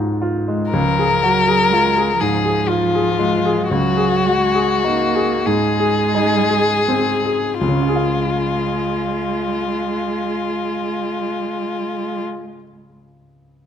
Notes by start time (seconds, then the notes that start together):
Already playing: C#2 G#2 G#3 F4 F#4
0.22 F4
0.48 G#3
0.71 C#2 F3 A#4
0.99 G#4
1.22 F#3 F#4
1.48 G#4
1.70 G#3 F4
1.97 G#4
2.21 G#2 F3 G#4
2.45 G#4
2.68 F4
2.95 G#4
3.19 G#3
3.45 G#4
3.70 C#2 F#3 F#4
3.97 G#4
4.25 G#3 F#4
4.55 G#4
4.84 A#3 D#4
5.15 G#4
5.46 G#2 G#3 G#4
5.80 G#4
6.15 D#4
6.50 G#4
6.88 C4
7.26 G#4
7.61 C#2 G#3 F4
7.68 C#3
7.75 C#4
7.82 F4
7.89 G#4
7.96 F5